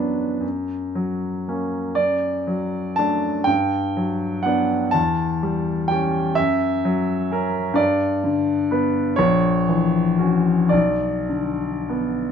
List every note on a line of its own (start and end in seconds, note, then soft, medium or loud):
0.00 0.39 F#2 soft
0.00 0.21 F#3 soft
0.00 0.38 B3 soft
0.00 0.38 D4 soft
0.00 0.41 B4 soft
0.41 1.93 F#2 soft
0.95 1.78 F#3 soft
1.48 1.94 A#3 soft
1.48 1.94 C#4 soft
1.95 3.44 F#2 soft
1.95 2.97 D5 medium
2.47 3.28 F#3 soft
2.96 3.45 A3 soft
2.96 3.44 D4 soft
2.96 3.47 A5 medium
3.44 4.90 G2 soft
3.44 4.44 G5 medium
3.97 4.75 F#3 soft
4.43 4.90 B3 soft
4.43 4.91 D4 soft
4.43 4.93 F#5 medium
4.91 6.33 E2 soft
4.91 5.89 A5 medium
5.43 6.18 G3 soft
5.88 6.33 C#4 soft
5.88 6.33 G4 soft
5.88 6.36 G5 medium
6.35 7.75 F#2 medium
6.35 7.78 E5 medium
6.85 7.60 F#3 soft
7.31 7.74 C#4 soft
7.31 7.75 A#4 soft
7.74 9.13 G2 medium
7.74 9.18 D5 medium
8.24 8.99 D3 soft
8.71 9.15 B3 soft
8.71 9.15 B4 soft
9.16 10.68 A#1 medium
9.16 10.70 C#5 medium
9.69 10.50 E3 soft
10.19 10.68 C#4 soft
10.19 10.68 F#4 soft
10.69 12.32 B1 soft
10.69 12.32 D5 medium
11.29 12.24 D3 soft
11.89 12.32 B3 soft